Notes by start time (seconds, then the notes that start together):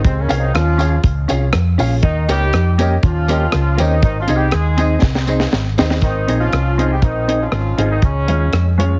0.04 C#2 C3 G#3 C4, kick, closed hi-hat
0.20 C#3 A#3 C#4
0.29 C2 C#4 F4 G#4 C#5 F5, closed hi-hat, tambourine
0.37 D#3 C4 D#4
0.54 D#2 F3 C#4 F4, cross-stick, closed hi-hat
0.78 C#4 F4 G#4 C#5 F5, closed hi-hat, tambourine
1.04 C#2, kick, closed hi-hat
1.28 C2 C#4 F4 G#4 C#5 F5, closed hi-hat, tambourine
1.53 F2 C#5 F5, cross-stick, closed hi-hat
1.78 A#1 C#4 F4 G#4 C#5 F5, open hi-hat, tambourine
2.02 D#2 D#3 A#3 D#4, kick, closed hi-hat
2.28 C#2 G3 A#3 C#4 D#4 G4 A#4 C#5 D#5, closed hi-hat, tambourine
2.53 F2, cross-stick, closed hi-hat
2.78 A#3 C#4 G4 A#4 C#5 D#5, closed hi-hat, tambourine
3.03 D#2 F3 C#4 F4, kick, closed hi-hat
3.28 A#3 C#4 G4 A#4 C#5 D#5, closed hi-hat, tambourine
3.52 C#2, cross-stick, closed hi-hat
3.77 D#2 D#3 A#3 C4 C#4 D#4 G4 A#4 C#5 D#5, closed hi-hat, tambourine
4.02 G#1 D#3 C4 D#4, kick, closed hi-hat
4.19 F3 C#4 F4
4.27 C2 C4 D#4 G#4 C5 D#5, closed hi-hat, tambourine
4.35 G3 D#4 G4
4.51 D#2 G#3 D#4 G#4, cross-stick, closed hi-hat
4.77 C4 D#4 G#4 C5 D#5, closed hi-hat, tambourine
5.02 C2, kick, snare
5.15 snare
5.27 C4 D#4 G#4 C5 D#5, tambourine
5.40 snare
5.53 G#1 C5 D#5, snare
5.78 D#2 C4 D#4 G#4 C5 D#5, snare, tambourine
5.90 snare
6.01 G#1 D#3 C4 D#4, kick, closed hi-hat
6.27 A#1 C4 D#4 G#4 C5 D#5, closed hi-hat
6.41 F3 C#4 F4
6.52 C2, cross-stick, closed hi-hat
6.78 C4 D#4 G#4 C5 D#5, closed hi-hat
6.92 G3 D#4 G4
7.02 A#1 D#3 C4 D#4, kick, closed hi-hat
7.28 C4 D#4 G#4 C5 D#5, closed hi-hat
7.41 F3 C#4 F4
7.52 G#1, cross-stick, closed hi-hat
7.77 G#1 C4 D#4 G#4 C5 D#5, closed hi-hat
7.90 D#3 C4 D#4
8.02 C#2 C#3 G#3 C#4, kick, closed hi-hat
8.28 D#2 G#3 C#4 F4 G#4 C#5, closed hi-hat
8.52 F2, cross-stick, closed hi-hat
8.78 G#3 C#4 F4 G#4 C#5, closed hi-hat